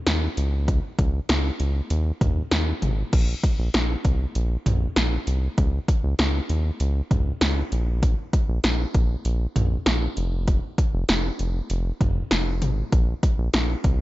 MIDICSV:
0, 0, Header, 1, 3, 480
1, 0, Start_track
1, 0, Tempo, 612245
1, 534, Time_signature, 4, 2, 24, 8
1, 10985, End_track
2, 0, Start_track
2, 0, Title_t, "Analog synth bass"
2, 0, Program_c, 0, 38
2, 54, Note_on_c, 0, 39, 109
2, 222, Note_off_c, 0, 39, 0
2, 293, Note_on_c, 0, 37, 101
2, 629, Note_off_c, 0, 37, 0
2, 773, Note_on_c, 0, 37, 97
2, 941, Note_off_c, 0, 37, 0
2, 1013, Note_on_c, 0, 37, 103
2, 1181, Note_off_c, 0, 37, 0
2, 1253, Note_on_c, 0, 37, 88
2, 1421, Note_off_c, 0, 37, 0
2, 1493, Note_on_c, 0, 39, 105
2, 1661, Note_off_c, 0, 39, 0
2, 1734, Note_on_c, 0, 39, 102
2, 1902, Note_off_c, 0, 39, 0
2, 1974, Note_on_c, 0, 39, 106
2, 2142, Note_off_c, 0, 39, 0
2, 2213, Note_on_c, 0, 32, 96
2, 2381, Note_off_c, 0, 32, 0
2, 2454, Note_on_c, 0, 34, 99
2, 2622, Note_off_c, 0, 34, 0
2, 2813, Note_on_c, 0, 34, 100
2, 2897, Note_off_c, 0, 34, 0
2, 2934, Note_on_c, 0, 34, 94
2, 3102, Note_off_c, 0, 34, 0
2, 3173, Note_on_c, 0, 36, 88
2, 3341, Note_off_c, 0, 36, 0
2, 3413, Note_on_c, 0, 34, 103
2, 3581, Note_off_c, 0, 34, 0
2, 3653, Note_on_c, 0, 34, 103
2, 3821, Note_off_c, 0, 34, 0
2, 3893, Note_on_c, 0, 34, 100
2, 4061, Note_off_c, 0, 34, 0
2, 4133, Note_on_c, 0, 36, 90
2, 4301, Note_off_c, 0, 36, 0
2, 4373, Note_on_c, 0, 37, 112
2, 4541, Note_off_c, 0, 37, 0
2, 4733, Note_on_c, 0, 37, 99
2, 4817, Note_off_c, 0, 37, 0
2, 4853, Note_on_c, 0, 37, 103
2, 5021, Note_off_c, 0, 37, 0
2, 5093, Note_on_c, 0, 39, 94
2, 5261, Note_off_c, 0, 39, 0
2, 5333, Note_on_c, 0, 37, 106
2, 5501, Note_off_c, 0, 37, 0
2, 5574, Note_on_c, 0, 37, 101
2, 5742, Note_off_c, 0, 37, 0
2, 5813, Note_on_c, 0, 37, 103
2, 5981, Note_off_c, 0, 37, 0
2, 6053, Note_on_c, 0, 34, 103
2, 6389, Note_off_c, 0, 34, 0
2, 6653, Note_on_c, 0, 34, 93
2, 6737, Note_off_c, 0, 34, 0
2, 6773, Note_on_c, 0, 34, 103
2, 6941, Note_off_c, 0, 34, 0
2, 7014, Note_on_c, 0, 34, 83
2, 7182, Note_off_c, 0, 34, 0
2, 7253, Note_on_c, 0, 34, 106
2, 7421, Note_off_c, 0, 34, 0
2, 7493, Note_on_c, 0, 34, 103
2, 7661, Note_off_c, 0, 34, 0
2, 7733, Note_on_c, 0, 34, 112
2, 7901, Note_off_c, 0, 34, 0
2, 7973, Note_on_c, 0, 29, 103
2, 8309, Note_off_c, 0, 29, 0
2, 8573, Note_on_c, 0, 29, 97
2, 8657, Note_off_c, 0, 29, 0
2, 8693, Note_on_c, 0, 29, 100
2, 8861, Note_off_c, 0, 29, 0
2, 8934, Note_on_c, 0, 29, 86
2, 9102, Note_off_c, 0, 29, 0
2, 9173, Note_on_c, 0, 29, 105
2, 9341, Note_off_c, 0, 29, 0
2, 9414, Note_on_c, 0, 29, 103
2, 9582, Note_off_c, 0, 29, 0
2, 9653, Note_on_c, 0, 29, 110
2, 9894, Note_on_c, 0, 32, 91
2, 9905, Note_off_c, 0, 29, 0
2, 10062, Note_off_c, 0, 32, 0
2, 10133, Note_on_c, 0, 34, 102
2, 10301, Note_off_c, 0, 34, 0
2, 10493, Note_on_c, 0, 34, 98
2, 10577, Note_off_c, 0, 34, 0
2, 10613, Note_on_c, 0, 34, 98
2, 10781, Note_off_c, 0, 34, 0
2, 10853, Note_on_c, 0, 36, 88
2, 10985, Note_off_c, 0, 36, 0
2, 10985, End_track
3, 0, Start_track
3, 0, Title_t, "Drums"
3, 52, Note_on_c, 9, 38, 113
3, 52, Note_on_c, 9, 42, 89
3, 130, Note_off_c, 9, 38, 0
3, 130, Note_off_c, 9, 42, 0
3, 293, Note_on_c, 9, 42, 71
3, 371, Note_off_c, 9, 42, 0
3, 533, Note_on_c, 9, 36, 102
3, 534, Note_on_c, 9, 42, 75
3, 612, Note_off_c, 9, 36, 0
3, 612, Note_off_c, 9, 42, 0
3, 773, Note_on_c, 9, 36, 97
3, 774, Note_on_c, 9, 42, 81
3, 852, Note_off_c, 9, 36, 0
3, 852, Note_off_c, 9, 42, 0
3, 1012, Note_on_c, 9, 42, 84
3, 1014, Note_on_c, 9, 38, 118
3, 1090, Note_off_c, 9, 42, 0
3, 1092, Note_off_c, 9, 38, 0
3, 1252, Note_on_c, 9, 42, 63
3, 1331, Note_off_c, 9, 42, 0
3, 1492, Note_on_c, 9, 42, 78
3, 1571, Note_off_c, 9, 42, 0
3, 1734, Note_on_c, 9, 36, 102
3, 1734, Note_on_c, 9, 45, 88
3, 1736, Note_on_c, 9, 42, 78
3, 1812, Note_off_c, 9, 36, 0
3, 1812, Note_off_c, 9, 45, 0
3, 1814, Note_off_c, 9, 42, 0
3, 1972, Note_on_c, 9, 38, 116
3, 1972, Note_on_c, 9, 42, 87
3, 2050, Note_off_c, 9, 38, 0
3, 2050, Note_off_c, 9, 42, 0
3, 2212, Note_on_c, 9, 42, 67
3, 2212, Note_on_c, 9, 47, 66
3, 2291, Note_off_c, 9, 42, 0
3, 2291, Note_off_c, 9, 47, 0
3, 2453, Note_on_c, 9, 42, 80
3, 2453, Note_on_c, 9, 49, 95
3, 2454, Note_on_c, 9, 36, 108
3, 2532, Note_off_c, 9, 36, 0
3, 2532, Note_off_c, 9, 42, 0
3, 2532, Note_off_c, 9, 49, 0
3, 2693, Note_on_c, 9, 36, 95
3, 2694, Note_on_c, 9, 42, 83
3, 2772, Note_off_c, 9, 36, 0
3, 2772, Note_off_c, 9, 42, 0
3, 2932, Note_on_c, 9, 42, 84
3, 2934, Note_on_c, 9, 38, 116
3, 3010, Note_off_c, 9, 42, 0
3, 3013, Note_off_c, 9, 38, 0
3, 3172, Note_on_c, 9, 42, 65
3, 3173, Note_on_c, 9, 36, 84
3, 3251, Note_off_c, 9, 42, 0
3, 3252, Note_off_c, 9, 36, 0
3, 3412, Note_on_c, 9, 42, 73
3, 3491, Note_off_c, 9, 42, 0
3, 3654, Note_on_c, 9, 45, 94
3, 3656, Note_on_c, 9, 42, 76
3, 3732, Note_off_c, 9, 45, 0
3, 3734, Note_off_c, 9, 42, 0
3, 3891, Note_on_c, 9, 38, 116
3, 3892, Note_on_c, 9, 42, 85
3, 3970, Note_off_c, 9, 38, 0
3, 3970, Note_off_c, 9, 42, 0
3, 4133, Note_on_c, 9, 42, 69
3, 4211, Note_off_c, 9, 42, 0
3, 4373, Note_on_c, 9, 36, 109
3, 4373, Note_on_c, 9, 42, 80
3, 4452, Note_off_c, 9, 36, 0
3, 4452, Note_off_c, 9, 42, 0
3, 4613, Note_on_c, 9, 36, 96
3, 4614, Note_on_c, 9, 42, 80
3, 4691, Note_off_c, 9, 36, 0
3, 4692, Note_off_c, 9, 42, 0
3, 4851, Note_on_c, 9, 42, 82
3, 4853, Note_on_c, 9, 38, 116
3, 4929, Note_off_c, 9, 42, 0
3, 4931, Note_off_c, 9, 38, 0
3, 5092, Note_on_c, 9, 42, 62
3, 5170, Note_off_c, 9, 42, 0
3, 5332, Note_on_c, 9, 42, 76
3, 5410, Note_off_c, 9, 42, 0
3, 5573, Note_on_c, 9, 36, 103
3, 5573, Note_on_c, 9, 45, 92
3, 5575, Note_on_c, 9, 42, 76
3, 5651, Note_off_c, 9, 45, 0
3, 5652, Note_off_c, 9, 36, 0
3, 5653, Note_off_c, 9, 42, 0
3, 5811, Note_on_c, 9, 38, 115
3, 5812, Note_on_c, 9, 42, 89
3, 5890, Note_off_c, 9, 38, 0
3, 5890, Note_off_c, 9, 42, 0
3, 6052, Note_on_c, 9, 42, 71
3, 6131, Note_off_c, 9, 42, 0
3, 6293, Note_on_c, 9, 36, 109
3, 6293, Note_on_c, 9, 42, 78
3, 6372, Note_off_c, 9, 36, 0
3, 6372, Note_off_c, 9, 42, 0
3, 6533, Note_on_c, 9, 36, 94
3, 6533, Note_on_c, 9, 42, 83
3, 6611, Note_off_c, 9, 36, 0
3, 6612, Note_off_c, 9, 42, 0
3, 6771, Note_on_c, 9, 42, 89
3, 6773, Note_on_c, 9, 38, 118
3, 6850, Note_off_c, 9, 42, 0
3, 6852, Note_off_c, 9, 38, 0
3, 7012, Note_on_c, 9, 42, 65
3, 7013, Note_on_c, 9, 36, 87
3, 7090, Note_off_c, 9, 42, 0
3, 7092, Note_off_c, 9, 36, 0
3, 7252, Note_on_c, 9, 42, 76
3, 7331, Note_off_c, 9, 42, 0
3, 7493, Note_on_c, 9, 45, 95
3, 7495, Note_on_c, 9, 42, 79
3, 7572, Note_off_c, 9, 45, 0
3, 7574, Note_off_c, 9, 42, 0
3, 7731, Note_on_c, 9, 38, 116
3, 7732, Note_on_c, 9, 42, 87
3, 7810, Note_off_c, 9, 38, 0
3, 7810, Note_off_c, 9, 42, 0
3, 7972, Note_on_c, 9, 42, 71
3, 8051, Note_off_c, 9, 42, 0
3, 8213, Note_on_c, 9, 36, 108
3, 8213, Note_on_c, 9, 42, 78
3, 8292, Note_off_c, 9, 36, 0
3, 8292, Note_off_c, 9, 42, 0
3, 8453, Note_on_c, 9, 36, 94
3, 8454, Note_on_c, 9, 42, 83
3, 8532, Note_off_c, 9, 36, 0
3, 8532, Note_off_c, 9, 42, 0
3, 8691, Note_on_c, 9, 42, 85
3, 8694, Note_on_c, 9, 38, 115
3, 8770, Note_off_c, 9, 42, 0
3, 8772, Note_off_c, 9, 38, 0
3, 8932, Note_on_c, 9, 42, 64
3, 9010, Note_off_c, 9, 42, 0
3, 9172, Note_on_c, 9, 42, 77
3, 9250, Note_off_c, 9, 42, 0
3, 9413, Note_on_c, 9, 45, 95
3, 9414, Note_on_c, 9, 36, 104
3, 9415, Note_on_c, 9, 42, 76
3, 9491, Note_off_c, 9, 45, 0
3, 9492, Note_off_c, 9, 36, 0
3, 9493, Note_off_c, 9, 42, 0
3, 9651, Note_on_c, 9, 38, 117
3, 9652, Note_on_c, 9, 42, 88
3, 9729, Note_off_c, 9, 38, 0
3, 9730, Note_off_c, 9, 42, 0
3, 9892, Note_on_c, 9, 42, 70
3, 9892, Note_on_c, 9, 47, 69
3, 9971, Note_off_c, 9, 42, 0
3, 9971, Note_off_c, 9, 47, 0
3, 10133, Note_on_c, 9, 36, 109
3, 10133, Note_on_c, 9, 42, 78
3, 10211, Note_off_c, 9, 42, 0
3, 10212, Note_off_c, 9, 36, 0
3, 10373, Note_on_c, 9, 36, 98
3, 10373, Note_on_c, 9, 42, 81
3, 10451, Note_off_c, 9, 36, 0
3, 10452, Note_off_c, 9, 42, 0
3, 10611, Note_on_c, 9, 42, 85
3, 10613, Note_on_c, 9, 38, 117
3, 10690, Note_off_c, 9, 42, 0
3, 10692, Note_off_c, 9, 38, 0
3, 10851, Note_on_c, 9, 42, 66
3, 10853, Note_on_c, 9, 36, 87
3, 10930, Note_off_c, 9, 42, 0
3, 10931, Note_off_c, 9, 36, 0
3, 10985, End_track
0, 0, End_of_file